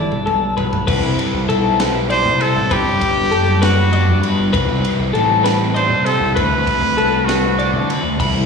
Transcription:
Already playing: picked electric bass G1, clean electric guitar G2 D3 B3 D4 E4 D5, trumpet E4
0.12 mid tom
0.26 picked electric bass B1, clean electric guitar G2 A4, mid tom
0.57 clean electric guitar B3 B4, floor tom
0.73 floor tom
0.87 picked electric bass C2, overdriven electric guitar C3 G3 C4 E4 G4, clean electric guitar B4, kick, crash
1.03 picked electric bass C2
1.19 overdriven electric guitar C4 E4 G4, ride
1.34 picked electric bass C2
1.48 picked electric bass B1, overdriven electric guitar G3 C4 E4 G4, clean electric guitar A4, ride
1.79 overdriven electric guitar C4 E4 G4, clean electric guitar B4, snare, ride
2.09 overdriven electric guitar G3 C4 E4 G4, trumpet C5, clean electric guitar D5, ride
2.25 picked electric bass C3
2.39 overdriven electric guitar C4 E4 G4, trumpet A4, clean electric guitar C5, ride
2.56 picked electric bass A1
2.69 picked electric bass G1, overdriven electric guitar G2 D3 G3 B3 D4 G4, trumpet G4, clean electric guitar B4, kick, ride
2.86 picked electric bass G1
3.01 overdriven electric guitar G3 B3 D4 G4, kick, ride
3.17 picked electric bass G1
3.31 picked electric bass F#1, overdriven electric guitar G3 B3 D4 G4, clean electric guitar A4, ride
3.61 overdriven electric guitar G3 B3 D4 G4, trumpet F#4, clean electric guitar B4, snare, ride
3.91 overdriven electric guitar G3 B3 D4 G4, clean electric guitar D5, ride
4.08 picked electric bass G2
4.22 overdriven electric guitar G3 B3 D4 G4, clean electric guitar B4, ride
4.39 picked electric bass G1
4.52 picked electric bass C2, overdriven electric guitar C3 G3 C4 D#4 G4, clean electric guitar B4, kick, ride
4.69 picked electric bass C2
4.84 overdriven electric guitar C4 D#4 G4, ride
5.00 picked electric bass C2
5.13 picked electric bass A1, overdriven electric guitar G3 C4 D#4 G4, clean electric guitar A4, ride
5.44 overdriven electric guitar C4 D#4 G4, clean electric guitar B4, snare, ride
5.74 overdriven electric guitar G3 C4 D#4 G4, trumpet C5, clean electric guitar D5, ride
5.90 picked electric bass C3
6.05 overdriven electric guitar C4 D#4 G4, trumpet A4, clean electric guitar C5, ride
6.20 picked electric bass C2
6.35 picked electric bass D2, overdriven electric guitar D3 A3 C4 F#4, trumpet B4, clean electric guitar B4, kick, ride
6.52 picked electric bass D2
6.66 overdriven electric guitar A3 C4 F#4, kick, ride
6.81 picked electric bass D2
6.96 picked electric bass C2, overdriven electric guitar D3 A3 C4 F#4, clean electric guitar A4, ride
7.25 overdriven electric guitar A3 C4 F#4, trumpet F#4, clean electric guitar B4, snare, ride
7.57 overdriven electric guitar D3 A3 C4 F#4, clean electric guitar D5, ride
7.73 picked electric bass D3
7.87 overdriven electric guitar A3 C4 F#4, clean electric guitar B4, ride
8.03 picked electric bass D2
8.17 picked electric bass C2, overdriven electric guitar C3 G3 C4 E4, clean electric guitar B5, kick, crash
8.33 picked electric bass C2

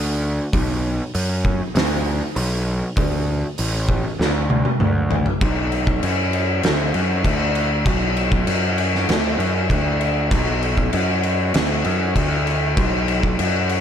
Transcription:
Already playing: picked electric bass D2
0.53 picked electric bass B1, kick, open hi-hat
1.15 picked electric bass F#2, open hi-hat
1.45 kick
1.75 picked electric bass D2, snare, open hi-hat
2.36 picked electric bass B1, open hi-hat
2.97 picked electric bass D2, kick, open hi-hat
3.58 picked electric bass A1, open hi-hat
3.89 kick
4.19 picked electric bass D2, snare
4.50 high tom
4.65 high tom
4.80 picked electric bass D2, mid tom
5.11 floor tom
5.26 floor tom
5.41 picked electric bass B1, kick, crash
5.72 crash
5.87 kick
6.03 picked electric bass F#2, crash
6.33 crash
6.63 picked electric bass D2, snare, crash
6.94 picked electric bass F#2, crash
7.24 picked electric bass D2, kick, crash
7.55 crash
7.86 picked electric bass B1, kick, crash
8.17 crash
8.32 kick
8.47 picked electric bass F#2, crash
8.78 crash
8.95 snare
9.09 picked electric bass D2, snare, crash
9.38 picked electric bass F#2, crash
9.70 picked electric bass D2, kick, crash
10.01 crash
10.31 picked electric bass B1, kick, crash
10.62 crash
10.77 kick
10.93 picked electric bass F#2, crash
11.23 crash
11.54 picked electric bass D2, snare, crash
11.84 picked electric bass F#2, crash
12.16 picked electric bass D2, kick, crash
12.47 crash
12.77 picked electric bass B1, kick, crash
13.08 crash
13.23 kick
13.39 picked electric bass F#2, crash
13.69 crash

